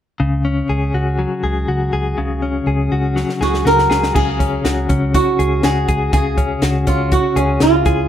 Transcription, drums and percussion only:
3.17 snare soft
3.29 snare soft
3.42 snare medium
3.54 snare medium
3.66 snare medium
3.79 snare medium
3.91 snare medium
4.03 snare medium
4.16 kick medium
4.16 crash medium
4.40 kick medium
4.40 closed hi-hat medium
4.65 snare loud
4.65 closed hi-hat medium
4.89 kick medium
4.89 closed hi-hat medium
5.14 kick medium
5.14 closed hi-hat medium
5.40 closed hi-hat medium
5.63 snare loud
5.63 closed hi-hat medium
5.88 kick medium
5.88 closed hi-hat medium
6.13 kick loud
6.13 closed hi-hat medium
6.38 kick medium
6.38 closed hi-hat medium
6.62 snare loud
6.62 closed hi-hat medium
6.87 kick medium
6.87 closed hi-hat medium
7.12 kick medium
7.12 closed hi-hat medium
7.37 closed hi-hat medium
7.60 snare loud
7.60 closed hi-hat medium
7.86 kick medium
7.86 closed hi-hat medium

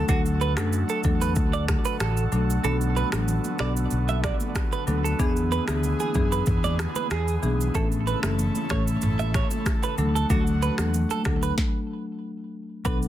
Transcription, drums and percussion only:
0.09 kick loud
0.09 shaker medium
0.26 shaker medium
0.41 shaker soft
0.57 finger snap medium
0.57 cross-stick medium
0.57 shaker medium
0.73 shaker medium
0.89 shaker medium
1.03 kick medium
1.03 shaker soft
1.21 shaker medium
1.36 kick loud
1.36 shaker medium
1.53 shaker soft
1.68 finger snap medium
1.68 kick medium
1.68 cross-stick medium
1.68 shaker medium
1.85 shaker medium
2.00 finger snap medium
2.00 cross-stick medium
2.00 shaker medium
2.17 shaker medium
2.32 shaker soft
2.50 shaker medium
2.64 low conga medium
2.64 shaker medium
2.81 shaker medium
2.96 high conga medium
2.96 shaker soft
3.12 finger snap medium
3.12 cross-stick loud
3.12 high conga medium
3.12 shaker medium
3.28 low conga medium
3.28 shaker medium
3.44 high conga medium
3.44 shaker medium
3.59 finger snap medium
3.59 cross-stick medium
3.59 shaker soft
3.77 shaker medium
3.91 shaker medium
4.08 high conga medium
4.08 shaker soft
4.24 finger snap medium
4.24 kick loud
4.24 cross-stick medium
4.24 shaker medium
4.40 high conga medium
4.40 shaker medium
4.55 finger snap medium
4.55 kick loud
4.55 cross-stick medium
4.55 shaker medium
4.72 shaker medium
4.87 high conga medium
4.87 low conga medium
4.87 shaker soft
5.05 shaker loud
5.19 kick loud
5.19 low conga medium
5.19 shaker medium
5.36 shaker soft
5.51 high conga medium
5.51 shaker soft
5.67 finger snap medium
5.67 cross-stick loud
5.67 high conga medium
5.67 shaker medium
5.84 low conga medium
5.84 shaker medium
6.00 high conga medium
6.00 shaker medium
6.14 kick medium
6.14 shaker soft
6.32 shaker medium
6.46 kick loud
6.46 mid tom medium
6.46 shaker medium
6.64 high conga medium
6.64 shaker soft
6.79 finger snap medium
6.79 cross-stick medium
6.79 shaker medium
6.95 high conga medium
6.95 shaker medium
7.11 finger snap medium
7.11 cross-stick medium
7.11 shaker medium
7.28 shaker medium
7.43 high conga medium
7.43 low conga medium
7.43 shaker soft
7.61 shaker loud
7.75 kick loud
7.75 low conga medium
7.75 shaker medium
7.92 shaker medium
8.07 high conga medium
8.07 shaker soft
8.23 finger snap medium
8.23 cross-stick loud
8.23 high conga medium
8.23 shaker medium
8.39 low conga medium
8.39 shaker medium
8.55 high conga medium
8.55 shaker medium
8.70 finger snap medium
8.70 kick medium
8.70 cross-stick medium
8.70 shaker soft
8.87 shaker medium
9.01 mid tom medium
9.01 shaker medium
9.19 high conga medium
9.19 shaker soft
9.34 finger snap medium
9.34 kick loud
9.34 cross-stick medium
9.34 shaker medium
9.51 high conga medium
9.51 shaker medium
9.66 finger snap medium
9.66 kick loud
9.66 cross-stick medium
9.66 shaker medium
9.83 shaker medium
9.98 high conga medium
9.98 low conga medium
9.98 shaker soft
10.16 shaker loud
10.30 kick loud
10.30 low conga medium
10.30 shaker medium
10.47 shaker medium
10.62 high conga medium
10.62 shaker soft
10.78 finger snap medium
10.78 cross-stick medium
10.78 high conga medium
10.78 shaker medium
10.94 low conga medium
10.94 shaker medium
11.10 high conga medium
11.10 shaker medium
11.25 finger snap medium
11.25 kick medium
11.25 cross-stick medium
11.25 shaker soft
11.43 shaker medium
11.58 kick loud
11.58 snare medium
12.85 kick loud
12.85 shaker medium
13.02 shaker medium

